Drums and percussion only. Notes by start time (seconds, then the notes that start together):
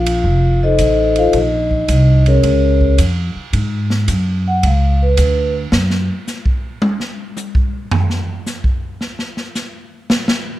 0.06 ride
0.24 kick
0.78 kick, hi-hat pedal, ride
1.16 ride
1.33 kick, ride
1.71 kick
1.88 kick, hi-hat pedal, ride
2.26 ride
2.43 kick, ride
2.81 kick
2.98 kick, hi-hat pedal, ride
3.53 kick, ride
3.90 snare
4.08 kick, hi-hat pedal, ride
4.63 kick, ride
5.17 kick, hi-hat pedal, ride
5.72 snare
5.90 snare
6.27 snare, hi-hat pedal
6.46 kick
6.82 high tom
7.00 snare
7.37 hi-hat pedal, high tom
7.55 kick
7.91 floor tom
8.10 snare
8.46 snare, hi-hat pedal
8.64 kick
9.01 snare
9.19 snare
9.37 snare
9.55 snare, hi-hat pedal
10.10 snare
10.28 snare